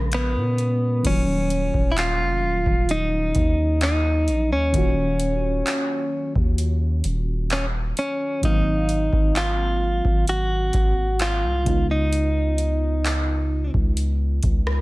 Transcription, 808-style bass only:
Already playing: A#1
0.36 A#2
1.05 D#1
1.74 D#1
2.20 F1
2.43 D#1
2.66 D#1
3.36 D#2
4.28 A#1
4.51 D#2
4.74 D#1
6.36 D#2
7.05 D#1
8.43 G#1
9.13 G#1
10.05 G#1
10.74 G#1
11.43 C2
11.67 C#2
13.74 C#2
14.43 C#2

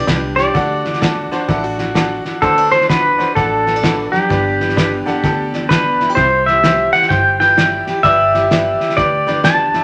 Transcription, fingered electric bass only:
0.08 C2
0.55 D2
1.49 A1
2.43 D2
3.37 A1
4.30 G1
5.24 D2
6.17 C2
7.10 G1
8.04 G1
8.98 D2

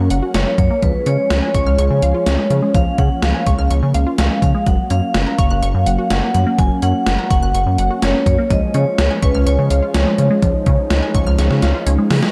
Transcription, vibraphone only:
0.35 C#5
0.59 C#5
0.83 B4
1.07 C#5
1.55 C#5
2.75 F5
2.98 F#5
3.23 F5
4.19 F5
4.43 F5
4.67 F#5
4.91 F5
5.39 F5
6.11 F#5
6.34 F#5
6.58 G#5
6.83 F#5
7.30 F#5
8.03 C#5
8.27 C#5
8.51 D#5
8.75 C#5
9.23 B4
9.47 C#5

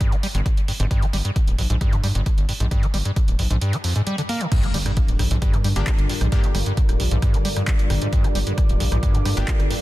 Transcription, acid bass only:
0.00 G2
0.12 G3
0.23 G3
0.35 G2
0.68 G2
0.80 G#2
0.91 G2
1.02 G3
1.13 G3
1.25 G2
1.58 G2
1.70 G#2
1.81 G2
1.92 G3
2.04 G3
2.15 G2
2.49 G2
2.60 G#2
2.71 G2
2.83 G3
2.94 G3
3.05 G2
3.39 G2
3.50 G#2
3.61 G2
3.73 G3
3.84 F2
3.96 G#2
4.07 G3
4.18 D3
4.29 A#3
4.41 D3
4.52 G2
4.63 G3
4.74 G3
4.86 G2
5.19 G2
5.31 G#2
5.42 G2
5.53 G3
5.64 G3
5.76 G2
6.10 G2
6.21 G#2
6.32 G2
6.44 G3
6.55 G3
6.66 G2
7.00 G2
7.11 G#2
7.22 G2
7.34 G3
7.45 G3
7.57 G2
7.90 G2
8.02 G#2
8.13 G2
8.24 G3
8.35 G3
8.47 G2
8.80 G2
8.92 G#2
9.03 G2
9.14 G3
9.25 G3
9.37 G2
9.70 G2

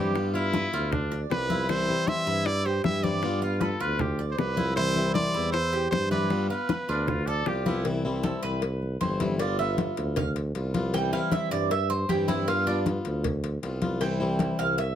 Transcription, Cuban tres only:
Already playing: D5
0.35 F5
0.54 B4
0.74 F4
1.12 D5
1.50 E4
1.69 E4
2.08 C5
2.27 E4
2.66 G4
3.03 D5
3.42 F5
3.61 B4
3.80 F4
4.19 D5
4.57 E4
4.77 E4
5.15 C5
5.34 E4
5.73 G4
6.11 D5
6.50 F5
6.70 B4
6.89 F4
7.27 D5
7.66 E4
8.24 A4
8.43 B4
9.01 C5
9.39 D5
9.59 E5
10.17 F5
10.94 G5
11.13 F5
11.32 E5
11.51 D5
11.71 E5
11.90 C5
12.09 G4
12.28 E4
12.48 F4
12.67 D4
14.01 G5
14.59 F5
14.78 E5

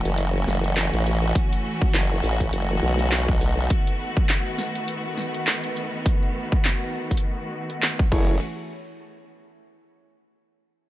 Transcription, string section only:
Already playing: E3 A3 C#4 F#4
3.70 D#3 B3
8.12 E3 A3 C#4 F#4

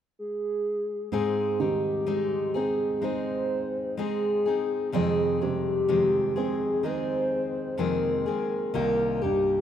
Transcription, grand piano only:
1.12 G#2
1.60 D#3
2.08 G#3
2.56 C4
3.02 D#4
3.99 G#3
4.94 F2
5.43 C3
5.89 G#3
6.37 C4
6.84 D#4
7.79 G#3
8.75 C2
9.24 G2

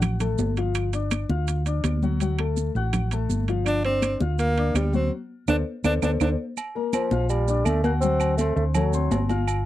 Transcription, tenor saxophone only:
3.67 D4
3.85 C4
4.39 A#3
4.76 G3
4.95 C4
5.49 D4
5.85 D4
6.03 D4
6.21 D4

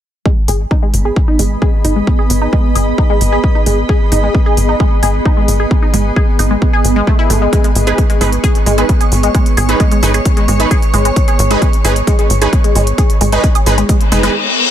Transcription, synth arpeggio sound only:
0.26 G#3
0.48 G#4
0.71 D#4
0.82 G#3
1.05 G#4
1.28 D#4
1.39 G#3
1.62 G#4
1.85 D#4
1.96 G#3
2.19 G#4
2.42 D#4
2.53 G#3
2.76 G#4
2.98 D#4
3.10 G#3
3.32 G#4
3.55 D#4
3.66 G#3
3.89 G#4
4.12 D#4
4.23 G#3
4.46 G#4
4.69 D#4
4.80 G#3
5.03 G#4
5.25 D#4
5.37 G#3
5.60 G#4
5.82 D#4
5.94 G#3
6.16 G#4
6.39 D#4
6.51 G#3
6.73 G#4
6.96 G#3
7.07 A3
7.19 E4
7.30 A3
7.42 G#3
7.53 G#3
7.64 G#3
7.87 G#4
8.10 G#3
8.21 G#3
8.44 G#4
8.66 G#3
8.78 G#3
9.01 G#4
9.23 G#3
9.35 G#3
9.57 G#4
9.80 G#3
9.92 G#3
10.14 G#4
10.37 G#3
10.48 G#3
10.71 G#4
10.94 G#3
11.05 G#3
11.28 G#4
11.51 G#3
11.62 G#3
11.85 G#4
12.07 G#3
12.19 G#3
12.42 G#4
12.64 G#3
12.75 G#3
12.98 G#4
13.21 G#3
13.32 G#3
13.55 G#4
13.78 G#3
13.89 G#3
14.12 G#3
14.23 G#3

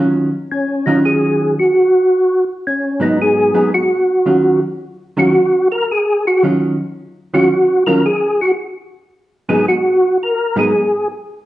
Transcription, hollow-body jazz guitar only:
Already playing: D#3 F#3 C#4 F4
0.87 D#3 F#3 C#4 F4
3.00 G#2 F#3 B3 D#4
3.54 G#2 F#3 B3 D#4
4.26 D#3 F#3 C#4 F4
5.17 D#3 F#3 C#4 F4
6.43 D#3 F#3 C#4 F4
7.34 D#3 F#3 C#4 F4
7.87 D#3 F#3 C#4 F4
9.49 G#2 F#3 B3 D#4
10.56 G#2 F#3 B3 D#4

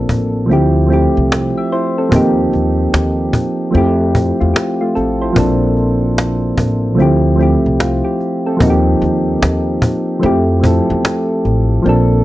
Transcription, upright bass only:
0.10 A1
0.50 D2
1.17 C2
2.12 D#2
2.53 D#2
2.93 D#2
3.75 F2
4.41 E2
4.97 A1
5.37 A#1
6.58 A1
6.99 D2
7.66 C2
8.61 D#2
9.02 D#2
9.42 D#2
10.23 F2
10.90 E2
11.45 A1
11.86 A#1

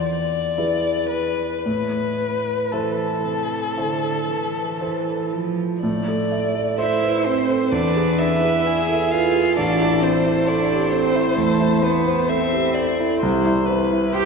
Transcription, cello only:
0.58 E3
2.72 E3
3.25 C3
3.77 D3
4.29 E3
5.33 F3
6.79 E4
7.26 C4
7.72 D4
8.21 E4
9.11 F4
9.57 D4
10.02 C4
10.47 D4
10.92 C4
11.37 A3
11.82 B3
12.29 C4
14.14 G4

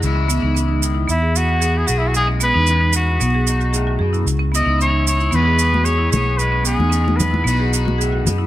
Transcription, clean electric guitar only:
0.04 C#3 E3 G#3 E4, muted clean electric guitar stroke
0.30 E4
0.55 muted clean electric guitar stroke
0.83 D#3
1.09 E2
1.36 B3
1.63 E3 B3
1.90 G#4
2.15 B2 G#3
2.68 E3 G#3
2.95 B3
3.21 B2
3.49 D#4
3.75 A2
4.01 B2
4.28 C#3
4.54 E4
4.82 E3 C#4
5.08 E4
5.34 E2 E3 G#3 B3 G#4
5.61 G#4
5.87 E3 B3
6.15 G#4
6.40 B2 G#3
6.67 B3
6.93 G#3, muted clean electric guitar stroke
7.20 B3
7.47 B2 B3 D#4 F#4, muted clean electric guitar stroke
7.74 F#4
8.00 A2
8.26 B2

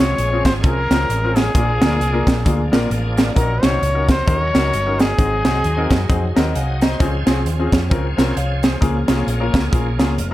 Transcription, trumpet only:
0.00 C#5
0.45 C5
0.64 A#4
1.36 G#4
3.37 A#4
3.64 C#5
4.10 C5
4.27 C5
4.38 C#5
5.00 G#4

